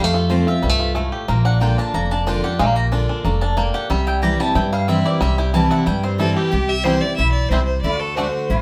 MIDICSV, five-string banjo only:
0, 0, Header, 1, 2, 480
1, 0, Start_track
1, 0, Tempo, 327332
1, 1893, Time_signature, 4, 2, 24, 8
1, 12637, End_track
2, 0, Start_track
2, 0, Title_t, "Five-string banjo"
2, 0, Program_c, 0, 105
2, 0, Note_on_c, 0, 67, 62
2, 57, Note_on_c, 0, 57, 91
2, 206, Note_on_c, 0, 65, 60
2, 406, Note_off_c, 0, 67, 0
2, 435, Note_on_c, 0, 53, 61
2, 446, Note_off_c, 0, 57, 0
2, 683, Note_off_c, 0, 65, 0
2, 689, Note_on_c, 0, 65, 60
2, 916, Note_on_c, 0, 55, 67
2, 1017, Note_off_c, 0, 55, 0
2, 1017, Note_on_c, 0, 57, 66
2, 1160, Note_off_c, 0, 65, 0
2, 1166, Note_on_c, 0, 65, 65
2, 1374, Note_off_c, 0, 57, 0
2, 1391, Note_on_c, 0, 57, 78
2, 1645, Note_on_c, 0, 67, 57
2, 1689, Note_off_c, 0, 53, 0
2, 1877, Note_off_c, 0, 57, 0
2, 1882, Note_on_c, 0, 58, 84
2, 1883, Note_off_c, 0, 67, 0
2, 2119, Note_off_c, 0, 65, 0
2, 2124, Note_on_c, 0, 62, 63
2, 2358, Note_off_c, 0, 58, 0
2, 2364, Note_on_c, 0, 58, 62
2, 2596, Note_off_c, 0, 62, 0
2, 2614, Note_on_c, 0, 62, 62
2, 2836, Note_off_c, 0, 58, 0
2, 2853, Note_on_c, 0, 58, 68
2, 3086, Note_off_c, 0, 62, 0
2, 3103, Note_on_c, 0, 62, 69
2, 3311, Note_off_c, 0, 62, 0
2, 3329, Note_on_c, 0, 62, 64
2, 3532, Note_off_c, 0, 58, 0
2, 3581, Note_on_c, 0, 67, 61
2, 3804, Note_on_c, 0, 56, 89
2, 3902, Note_off_c, 0, 56, 0
2, 3902, Note_on_c, 0, 58, 92
2, 4009, Note_off_c, 0, 62, 0
2, 4243, Note_off_c, 0, 67, 0
2, 4284, Note_on_c, 0, 62, 64
2, 4285, Note_off_c, 0, 58, 0
2, 4518, Note_off_c, 0, 62, 0
2, 4536, Note_on_c, 0, 62, 61
2, 4759, Note_on_c, 0, 58, 75
2, 4996, Note_off_c, 0, 62, 0
2, 5014, Note_on_c, 0, 62, 64
2, 5222, Note_off_c, 0, 58, 0
2, 5239, Note_on_c, 0, 58, 80
2, 5487, Note_on_c, 0, 67, 66
2, 5679, Note_off_c, 0, 62, 0
2, 5717, Note_off_c, 0, 58, 0
2, 5722, Note_off_c, 0, 67, 0
2, 5723, Note_on_c, 0, 55, 90
2, 5972, Note_on_c, 0, 64, 58
2, 6204, Note_on_c, 0, 67, 63
2, 6448, Note_off_c, 0, 55, 0
2, 6454, Note_on_c, 0, 55, 78
2, 6671, Note_off_c, 0, 64, 0
2, 6677, Note_on_c, 0, 64, 69
2, 6926, Note_off_c, 0, 55, 0
2, 6932, Note_on_c, 0, 55, 66
2, 7156, Note_on_c, 0, 60, 67
2, 7406, Note_off_c, 0, 64, 0
2, 7412, Note_on_c, 0, 64, 60
2, 7629, Note_off_c, 0, 55, 0
2, 7634, Note_on_c, 0, 55, 94
2, 7842, Note_off_c, 0, 60, 0
2, 7876, Note_off_c, 0, 64, 0
2, 7893, Note_on_c, 0, 64, 64
2, 8103, Note_off_c, 0, 55, 0
2, 8120, Note_on_c, 0, 55, 64
2, 8257, Note_off_c, 0, 67, 0
2, 8348, Note_off_c, 0, 64, 0
2, 8366, Note_on_c, 0, 64, 67
2, 8577, Note_off_c, 0, 55, 0
2, 8595, Note_on_c, 0, 55, 72
2, 8854, Note_on_c, 0, 60, 64
2, 9036, Note_off_c, 0, 64, 0
2, 9084, Note_on_c, 0, 64, 68
2, 9283, Note_off_c, 0, 55, 0
2, 9335, Note_on_c, 0, 67, 61
2, 9521, Note_off_c, 0, 60, 0
2, 9567, Note_off_c, 0, 64, 0
2, 9567, Note_off_c, 0, 67, 0
2, 10047, Note_on_c, 0, 55, 65
2, 10055, Note_on_c, 0, 60, 66
2, 10059, Note_on_c, 0, 64, 61
2, 10161, Note_off_c, 0, 55, 0
2, 10161, Note_off_c, 0, 60, 0
2, 10166, Note_off_c, 0, 64, 0
2, 11029, Note_on_c, 0, 55, 65
2, 11036, Note_on_c, 0, 60, 70
2, 11037, Note_on_c, 0, 64, 67
2, 11132, Note_off_c, 0, 55, 0
2, 11134, Note_off_c, 0, 60, 0
2, 11137, Note_off_c, 0, 64, 0
2, 11983, Note_on_c, 0, 57, 60
2, 11988, Note_on_c, 0, 62, 64
2, 11995, Note_off_c, 0, 62, 0
2, 11995, Note_on_c, 0, 62, 64
2, 12091, Note_off_c, 0, 57, 0
2, 12096, Note_off_c, 0, 62, 0
2, 12637, End_track
0, 0, End_of_file